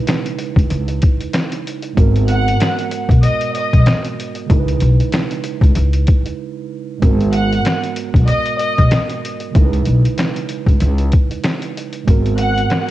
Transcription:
0.00 1.91 C#3 medium
0.00 1.92 G#3 medium
0.00 1.93 D#4 medium
0.00 1.94 E4 medium
0.00 1.98 B4 medium
0.07 snare loud
0.07 closed hi-hat loud
0.26 closed hi-hat soft
0.39 closed hi-hat medium
0.56 0.69 C#2 loud
0.56 kick loud
0.56 closed hi-hat medium
0.70 0.99 C#2 loud
0.70 closed hi-hat medium
0.88 closed hi-hat medium
1.02 kick loud
1.02 closed hi-hat medium
1.20 closed hi-hat medium
1.33 snare loud
1.33 snare medium
1.33 closed hi-hat medium
1.52 closed hi-hat medium
1.67 closed hi-hat medium
1.82 closed hi-hat medium
1.93 4.43 G#2 medium
1.93 4.44 G#3 medium
1.93 4.45 B3 medium
1.97 2.53 G#1 loud
1.97 4.46 F#4 medium
1.97 4.47 A#4 medium
1.97 kick loud
1.97 closed hi-hat medium
2.16 closed hi-hat soft
2.28 2.75 F#5 medium
2.28 2.75 F#6 medium
2.28 closed hi-hat medium
2.48 closed hi-hat medium
2.60 snare loud
2.60 closed hi-hat loud
2.79 closed hi-hat medium
2.91 closed hi-hat medium
3.09 3.21 B1 loud
3.09 kick medium
3.09 closed hi-hat medium
3.23 3.52 D#5 medium
3.23 3.52 D#6 medium
3.23 closed hi-hat medium
3.41 closed hi-hat medium
3.55 3.84 D#5 medium
3.55 3.84 D#6 medium
3.55 closed hi-hat medium
3.73 3.85 B1 medium
3.73 kick medium
3.73 closed hi-hat medium
3.86 snare loud
3.86 snare medium
3.86 closed hi-hat medium
4.04 closed hi-hat medium
4.20 closed hi-hat medium
4.35 closed hi-hat medium
4.46 6.96 C#3 medium
4.46 6.97 G#3 medium
4.46 6.98 D#4 medium
4.50 4.78 C#2 loud
4.50 6.99 E4 medium
4.50 4.59 A#4 medium
4.50 kick loud
4.50 closed hi-hat medium
4.60 7.03 B4 medium
4.68 closed hi-hat soft
4.80 4.97 B1 loud
4.80 closed hi-hat medium
5.00 closed hi-hat medium
5.12 snare loud
5.12 closed hi-hat loud
5.31 closed hi-hat medium
5.44 closed hi-hat medium
5.61 5.74 C#2 loud
5.61 kick loud
5.61 closed hi-hat medium
5.75 6.04 C#2 loud
5.75 closed hi-hat medium
5.93 closed hi-hat medium
6.07 kick loud
6.07 closed hi-hat medium
6.26 closed hi-hat medium
6.98 9.49 G#2 medium
6.98 9.50 G#3 medium
6.98 9.51 B3 medium
7.02 7.58 G#1 loud
7.02 9.51 F#4 medium
7.02 9.52 A#4 medium
7.02 kick loud
7.02 closed hi-hat medium
7.21 closed hi-hat soft
7.33 7.80 F#5 medium
7.33 7.81 F#6 medium
7.33 closed hi-hat medium
7.53 closed hi-hat soft
7.65 snare loud
7.65 snare medium
7.65 closed hi-hat medium
7.84 closed hi-hat medium
7.96 closed hi-hat medium
8.14 8.27 B1 medium
8.14 kick medium
8.14 closed hi-hat medium
8.28 8.57 D#5 medium
8.28 8.57 D#6 medium
8.28 closed hi-hat medium
8.46 closed hi-hat medium
8.59 8.88 D#5 medium
8.59 8.89 D#6 medium
8.59 closed hi-hat medium
8.78 8.90 B1 medium
8.78 kick medium
8.78 closed hi-hat medium
8.91 snare loud
8.91 snare medium
8.91 closed hi-hat medium
9.09 closed hi-hat medium
9.25 closed hi-hat medium
9.40 closed hi-hat medium
9.51 12.02 C#3 medium
9.51 12.03 G#3 medium
9.51 12.03 D#4 medium
9.51 kick loud
9.51 closed hi-hat medium
9.55 9.83 C#2 loud
9.55 12.04 E4 medium
9.55 9.64 A#4 medium
9.65 12.09 B4 medium
9.73 closed hi-hat soft
9.85 10.02 B1 medium
9.85 closed hi-hat medium
10.05 closed hi-hat medium
10.18 snare loud
10.18 snare medium
10.18 closed hi-hat medium
10.36 closed hi-hat soft
10.49 closed hi-hat medium
10.66 10.79 C#2 loud
10.66 kick medium
10.66 closed hi-hat medium
10.80 11.09 C#2 loud
10.80 closed hi-hat medium
10.98 closed hi-hat medium
11.12 kick loud
11.12 closed hi-hat medium
11.31 closed hi-hat medium
11.44 snare loud
11.44 snare medium
11.44 closed hi-hat medium
11.62 closed hi-hat medium
11.77 closed hi-hat medium
11.93 closed hi-hat medium
12.03 12.91 G#2 medium
12.03 12.91 G#3 medium
12.03 12.91 B3 medium
12.07 12.63 G#1 loud
12.07 12.91 F#4 medium
12.07 12.91 A#4 medium
12.07 kick loud
12.07 closed hi-hat medium
12.26 closed hi-hat soft
12.38 12.85 F#5 medium
12.38 12.86 F#6 medium
12.38 closed hi-hat medium
12.58 closed hi-hat soft
12.70 snare loud
12.70 snare medium
12.70 closed hi-hat medium

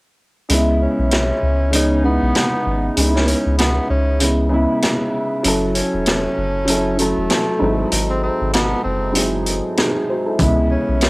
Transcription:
0.49 0.87 C#2 loud
0.49 1.52 C#3 medium
0.49 1.53 G#3 medium
0.49 1.53 B3 medium
0.49 closed hi-hat medium
0.53 1.54 E4 loud
0.82 2.01 C#4 medium
0.99 1.32 B1 medium
1.11 cross-stick medium
1.11 snare loud
1.11 closed hi-hat medium
1.43 2.19 C#2 loud
1.71 1.98 C#3 medium
1.71 1.99 G#3 medium
1.71 2.00 B3 medium
1.71 closed hi-hat medium
1.75 2.01 D#4 loud
2.02 2.82 C#3 medium
2.02 2.83 G#3 medium
2.02 2.93 B3 medium
2.02 2.83 B3 medium
2.07 2.84 E4 medium
2.22 2.32 B1 medium
2.35 cross-stick medium
2.35 snare loud
2.35 closed hi-hat medium
2.66 2.90 G#1 medium
2.96 3.34 C#2 loud
2.96 3.99 C#3 medium
2.96 4.00 G#3 medium
2.96 4.01 B3 medium
2.96 closed hi-hat medium
3.00 3.06 D#4 medium
3.07 4.05 E4 medium
3.15 3.26 C#4 medium
3.15 snare soft
3.27 3.55 C#4 medium
3.27 closed hi-hat medium
3.46 3.79 C#2 medium
3.58 3.87 B3 medium
3.58 cross-stick medium
3.58 snare loud
3.58 closed hi-hat medium
3.90 4.66 C#2 medium
3.90 4.36 C#4 medium
4.19 4.46 C#3 medium
4.19 4.47 G#3 medium
4.19 4.48 B3 medium
4.19 closed hi-hat medium
4.24 4.49 E4 medium
4.49 5.29 C#3 loud
4.49 5.30 G#3 medium
4.49 5.30 B3 medium
4.54 5.31 E4 loud
4.82 cross-stick medium
4.82 snare loud
4.82 closed hi-hat medium
5.43 5.82 F#1 loud
5.43 6.47 F#3 medium
5.43 6.47 C#4 medium
5.43 6.48 E4 medium
5.43 closed hi-hat medium
5.48 6.49 A4 medium
5.74 6.95 C#4 medium
5.74 closed hi-hat medium
5.94 6.27 E1 medium
6.06 cross-stick medium
6.06 snare loud
6.06 closed hi-hat medium
6.38 7.13 F#1 loud
6.65 6.93 F#3 medium
6.65 6.94 C#4 medium
6.65 6.95 E4 medium
6.65 closed hi-hat medium
6.70 6.95 A4 medium
6.97 7.59 F#3 medium
6.97 7.88 A3 medium
6.97 7.61 C#4 medium
6.97 7.61 E4 medium
6.97 closed hi-hat medium
7.02 7.62 A4 medium
7.17 7.27 E1 medium
7.30 cross-stick medium
7.30 snare loud
7.30 closed hi-hat medium
7.59 7.85 G#1 loud
7.59 8.63 G#2 medium
7.59 8.63 F#3 medium
7.59 8.64 C4 medium
7.59 8.65 E4 medium
7.64 8.65 A4 medium
7.92 8.29 G#1 loud
7.92 closed hi-hat medium
8.10 8.21 C4 medium
8.23 8.51 C4 medium
8.41 8.74 G#1 medium
8.53 8.82 B3 medium
8.53 cross-stick medium
8.53 snare loud
8.53 closed hi-hat medium
8.84 9.61 F#1 medium
8.84 9.30 C4 medium
9.12 9.40 G#2 medium
9.12 9.41 F#3 medium
9.12 9.41 C4 medium
9.12 9.42 E4 medium
9.12 closed hi-hat medium
9.17 9.43 G#4 medium
9.46 closed hi-hat medium
9.77 10.07 D#4 medium
9.77 10.07 G#4 medium
9.77 cross-stick medium
9.77 snare loud
9.77 closed hi-hat medium
10.09 10.27 F#4 medium
10.09 10.26 C5 medium
10.26 10.41 E4 medium
10.26 10.56 A4 medium
10.38 10.76 C#2 loud
10.38 11.10 C#3 medium
10.38 11.10 G#3 medium
10.38 11.10 B3 medium
10.38 kick loud
10.38 closed hi-hat medium
10.43 11.10 E4 loud
10.71 11.10 C#4 medium
10.89 11.10 B1 medium
11.01 cross-stick medium
11.01 snare loud
11.01 closed hi-hat medium

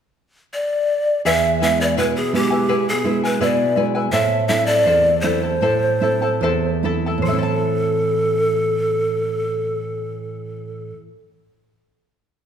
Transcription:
0.54 1.21 D5 medium
1.25 1.95 E2 medium
1.25 1.60 E4 medium
1.25 1.61 G#4 medium
1.25 1.60 B4 medium
1.25 1.59 E5 medium
1.25 1.61 G#5 medium
1.60 2.19 G#3 soft
1.60 2.19 B3 soft
1.60 1.79 E4 medium
1.60 2.19 E4 soft
1.60 1.79 B4 medium
1.60 1.79 E5 soft
1.60 1.82 E5 medium
1.60 1.78 G#5 medium
1.80 1.96 E4 soft
1.80 1.97 B4 soft
1.80 1.97 D5 medium
1.80 1.97 G#5 soft
1.97 2.67 B2 medium
1.97 2.32 E4 medium
1.97 2.33 G#4 medium
1.97 2.14 B4 medium
1.97 2.33 B4 medium
1.97 2.32 E5 medium
1.97 2.34 G#5 medium
2.16 2.36 G#4 medium
2.33 2.91 G#3 soft
2.33 2.91 B3 soft
2.33 2.91 E4 soft
2.33 2.51 E4 medium
2.33 2.90 G4 medium
2.33 2.50 B4 medium
2.33 2.51 E5 soft
2.33 2.49 G#5 medium
2.50 2.68 E4 soft
2.50 2.68 B4 soft
2.50 2.68 G#5 soft
2.68 3.39 B2 medium
2.68 3.04 E4 medium
2.68 3.05 G#4 medium
2.68 3.04 B4 medium
2.68 3.03 E5 medium
2.68 3.04 G#5 medium
2.89 3.26 G#4 medium
3.04 3.62 G#3 soft
3.04 3.62 B3 soft
3.04 3.63 E4 soft
3.04 3.23 E4 medium
3.04 3.23 B4 medium
3.04 3.23 E5 medium
3.04 3.22 G#5 medium
3.24 3.40 E4 soft
3.24 3.40 B4 soft
3.24 3.43 B4 medium
3.24 3.40 G#5 soft
3.41 4.11 B2 medium
3.41 3.76 E4 medium
3.41 3.77 G#4 medium
3.41 3.76 B4 medium
3.41 3.84 D5 medium
3.41 3.75 E5 medium
3.41 3.76 G#5 medium
3.76 4.06 G#3 soft
3.76 4.06 B3 soft
3.76 4.06 E4 soft
3.76 3.95 E4 soft
3.76 3.94 B4 soft
3.76 3.95 E5 soft
3.76 3.94 G#5 medium
3.95 4.12 E4 soft
3.95 4.13 B4 soft
3.95 4.13 G#5 soft
4.12 4.84 A2 medium
4.12 4.47 E4 medium
4.12 4.48 A4 medium
4.12 4.49 C5 medium
4.12 4.46 E5 medium
4.12 4.47 E5 medium
4.12 4.48 A5 medium
4.48 5.08 A3 soft
4.48 5.09 C4 soft
4.48 4.67 E4 soft
4.48 5.09 E4 soft
4.48 4.67 A4 medium
4.48 4.68 E5 medium
4.48 4.67 E5 soft
4.48 4.66 A5 medium
4.66 4.85 E4 soft
4.66 4.86 A4 soft
4.66 5.23 D5 medium
4.66 4.86 A5 soft
4.85 5.59 E2 medium
4.85 5.23 E4 medium
4.85 5.23 A4 medium
4.85 5.23 C5 medium
4.85 5.22 E5 medium
4.85 5.24 A5 medium
5.21 5.54 A3 soft
5.21 5.54 C4 soft
5.21 5.54 E4 soft
5.21 5.43 E4 soft
5.21 5.43 A4 medium
5.21 6.82 C5 medium
5.21 5.43 E5 soft
5.21 5.42 A5 medium
5.43 5.62 E4 soft
5.43 5.62 A4 soft
5.43 5.62 A5 soft
5.61 6.39 A2 medium
5.61 6.01 E4 medium
5.61 6.01 A4 medium
5.61 6.01 C5 medium
5.61 6.01 E5 medium
5.61 6.01 A5 medium
6.00 6.67 A3 soft
6.00 6.67 C4 soft
6.00 6.67 E4 soft
6.00 6.22 E4 medium
6.00 6.21 A4 medium
6.00 6.21 E5 soft
6.00 6.20 A5 medium
6.22 6.42 E4 soft
6.22 6.42 A4 soft
6.22 6.42 A5 soft
6.41 7.25 E2 medium
6.41 6.84 E4 medium
6.41 6.84 A4 medium
6.41 6.84 C5 medium
6.41 6.83 E5 medium
6.41 6.84 A5 medium
6.83 7.18 A3 soft
6.83 7.19 C4 soft
6.83 7.19 E4 soft
6.83 7.06 E4 medium
6.83 7.06 A4 medium
6.83 7.06 E5 medium
6.83 7.05 A5 medium
7.06 7.29 E4 soft
7.06 7.28 A4 soft
7.06 7.28 A5 medium
7.18 10.90 A2 soft
7.22 10.95 E3 soft
7.22 10.98 A4 medium
7.22 10.99 C5 medium
7.27 10.99 A3 soft
7.27 7.42 E5 medium
7.32 11.04 C4 soft
7.32 11.10 E4 medium
7.36 11.08 E4 medium
7.36 11.15 A4 medium
7.43 11.19 A5 medium

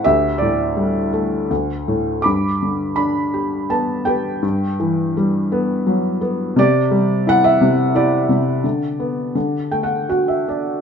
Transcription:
0.04 1.46 D2 medium
0.04 1.08 G4 medium
0.04 0.41 E5 medium
0.38 1.47 A2 soft
0.38 1.07 D5 medium
0.77 1.48 G3 medium
1.13 1.49 A3 soft
1.50 2.22 D2 soft
1.88 2.24 A2 soft
2.22 4.40 G2 medium
2.22 2.94 B5 medium
2.22 2.98 D6 medium
2.62 4.03 D3 soft
2.96 4.40 D4 soft
2.96 3.71 B5 medium
3.34 4.05 G4 soft
3.70 4.41 B3 medium
3.70 4.04 A5 medium
4.05 4.42 G4 soft
4.05 5.13 B4 soft
4.05 4.76 G5 medium
4.42 6.53 G2 medium
4.80 6.17 E3 medium
5.17 6.53 G3 medium
5.52 6.20 B3 medium
5.87 6.55 F#3 medium
6.21 6.56 B3 medium
6.56 7.60 C3 medium
6.56 7.58 G4 medium
6.56 7.30 D5 loud
6.91 8.25 G3 medium
7.27 7.93 E4 medium
7.27 7.46 F#5 loud
7.44 7.97 E5 medium
7.61 8.27 C3 medium
7.95 8.62 E4 medium
7.95 10.07 G4 medium
7.95 10.06 D5 medium
8.29 8.63 C3 soft
8.64 9.33 D3 medium
9.00 9.34 B3 soft
9.35 10.81 D3 medium
9.72 10.81 A3 soft
9.72 9.83 G5 medium
9.83 10.08 F#5 medium
10.09 10.81 F#4 soft
10.09 10.28 F#5 medium
10.28 10.46 E5 soft
10.48 10.81 D4 soft
10.48 10.81 D5 soft

